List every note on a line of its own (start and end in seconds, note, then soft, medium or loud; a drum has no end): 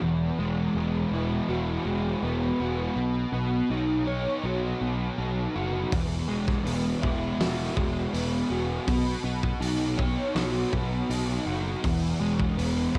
0.00 0.30 E1 medium
0.00 1.86 E2 medium
0.00 0.39 B3 medium
0.39 0.66 E1 medium
0.39 1.85 G#3 medium
0.75 1.03 E1 medium
0.75 2.22 B3 medium
1.11 1.39 E1 medium
1.11 2.97 E4 medium
1.49 1.77 E1 medium
1.49 2.60 F#4 medium
1.85 2.13 E1 medium
1.85 2.96 G#3 medium
2.22 2.50 E1 medium
2.22 2.96 B3 medium
2.60 2.87 E1 medium
2.60 4.45 F#4 medium
2.96 3.24 B1 medium
2.96 3.33 B3 medium
3.32 3.60 B1 medium
3.32 4.81 B3 medium
3.70 4.25 B1 medium
3.70 5.17 D#4 medium
4.07 5.92 C#5 medium
4.43 4.72 B1 medium
4.43 5.55 F#4 medium
4.81 5.09 B1 medium
4.81 6.28 B3 medium
5.18 5.46 B1 medium
5.18 5.92 D#4 medium
5.55 5.83 F#1 medium
5.55 5.94 F#4 medium
5.91 6.20 E1 medium
5.91 7.76 E2 medium
5.91 kick loud
5.91 open hi-hat medium
6.28 6.57 E1 medium
6.28 7.75 G#3 medium
6.48 kick medium
6.48 snare soft
6.64 6.94 E1 medium
6.64 8.13 B3 medium
6.64 open hi-hat soft
7.02 7.31 E1 medium
7.02 8.88 E4 medium
7.02 kick medium
7.40 7.68 E1 medium
7.40 8.51 F#4 medium
7.40 snare loud
7.40 open hi-hat medium
7.76 8.04 E1 medium
7.76 8.87 G#3 medium
7.76 kick medium
8.13 8.41 E1 medium
8.13 8.88 B3 medium
8.13 open hi-hat soft
8.50 8.78 E1 medium
8.50 10.35 F#4 medium
8.87 9.15 B1 medium
8.87 9.24 B3 medium
8.87 kick loud
8.87 open hi-hat medium
9.24 9.52 B1 medium
9.24 10.72 B3 medium
9.43 kick medium
9.61 10.16 B1 medium
9.61 11.08 D#4 medium
9.61 open hi-hat medium
9.98 11.83 C#5 medium
9.98 kick medium
10.35 10.63 B1 medium
10.35 11.45 F#4 medium
10.35 snare loud
10.35 open hi-hat medium
10.73 11.01 B1 medium
10.73 12.20 B3 medium
10.73 kick medium
11.09 11.37 B1 medium
11.09 11.84 D#4 medium
11.09 open hi-hat medium
11.46 11.74 F#1 medium
11.46 11.87 F#4 medium
11.84 12.12 E1 medium
11.84 12.99 E2 medium
11.84 kick loud
11.84 open hi-hat medium
12.20 12.48 E1 medium
12.20 12.99 G#3 medium
12.40 kick medium
12.57 12.86 E1 medium
12.57 12.99 B3 medium
12.57 open hi-hat medium
12.95 12.99 E1 medium
12.95 12.99 E4 medium
12.95 kick medium